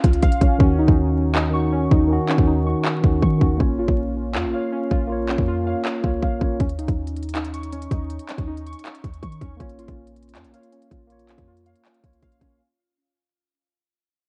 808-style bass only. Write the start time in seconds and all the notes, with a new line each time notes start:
0.04 C#2
0.23 A#1
0.41 A#1
0.60 D#2
0.79 C#2
0.88 D#2
1.91 D#2
2.38 D#2
3.04 D#2
3.22 D#3
3.41 D#2
3.60 A#1
3.79 G#1
3.88 A#1
4.35 F2
4.44 A#1
4.91 A#1
5.38 F2
6.04 C#2
6.23 A#1
6.41 A#1
6.60 D#2
6.79 C#2
6.88 D#2
7.91 D#2
8.38 D#2
9.04 D#2
9.23 D#3
9.41 D#2
9.60 A#1
9.79 G#1
9.88 A#1
10.35 F2
10.44 A#1
10.91 A#1
11.38 F2
12.04 C#2
12.23 A#1
12.41 A#1